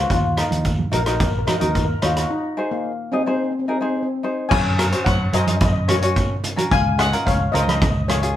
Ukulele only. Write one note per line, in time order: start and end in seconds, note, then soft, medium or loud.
0.00 0.10 F4 soft
0.00 0.10 C5 medium
0.37 0.70 D#4 medium
0.37 0.71 F4 medium
0.37 0.71 A#4 medium
0.91 1.00 D#4 medium
0.91 1.01 F#4 medium
0.91 1.01 A#4 medium
1.06 1.31 D#4 medium
1.06 1.31 F#4 medium
1.06 1.32 A#4 medium
1.47 1.56 D#4 medium
1.47 1.56 F#4 medium
1.47 1.56 A#4 medium
1.60 1.85 D#4 medium
1.60 1.86 F#4 medium
1.60 1.86 A#4 medium
2.02 2.30 D#4 medium
2.02 2.30 F#4 medium
2.02 2.30 C#5 medium
2.57 2.91 D#4 medium
2.57 2.91 G#4 medium
2.57 2.91 C5 medium
3.12 3.21 D#4 medium
3.12 3.21 G#4 medium
3.12 3.21 D#5 medium
3.26 3.51 D#4 medium
3.26 3.52 G#4 medium
3.26 3.52 C5 medium
3.68 3.76 D#4 medium
3.68 3.77 G#4 soft
3.68 3.77 A#4 medium
3.81 4.06 D#4 medium
3.81 4.06 G#4 medium
3.81 4.07 C5 medium
4.23 4.51 D#4 medium
4.23 4.51 G#4 soft
4.23 4.51 C5 medium
4.78 4.86 C#4 medium
4.78 4.86 F#4 medium
4.78 4.87 A#4 medium
4.92 5.17 C#4 medium
4.92 5.17 F#4 medium
4.92 5.17 C5 medium
5.33 5.66 C#4 medium
5.33 5.66 F#4 medium
5.33 5.67 A#4 medium
5.88 5.96 C#4 medium
5.88 5.96 F#4 medium
5.88 5.97 C#5 medium
6.02 6.35 C#4 medium
6.02 6.35 F#4 medium
6.02 6.35 C#5 medium
6.56 6.70 C#4 medium
6.56 6.70 F#4 medium
6.56 6.71 A#4 medium
6.98 7.06 C#4 medium
6.98 7.07 F4 medium
6.98 7.07 G#4 medium
7.12 7.37 C#4 medium
7.12 7.37 F4 medium
7.12 7.37 A#4 medium
7.53 7.86 C#4 medium
7.53 7.86 F4 medium
7.53 7.86 A#4 medium
8.08 8.16 C#4 medium
8.08 8.17 F4 medium
8.08 8.17 G#4 medium
8.22 8.37 C#4 medium
8.22 8.37 F4 medium
8.22 8.37 G#4 medium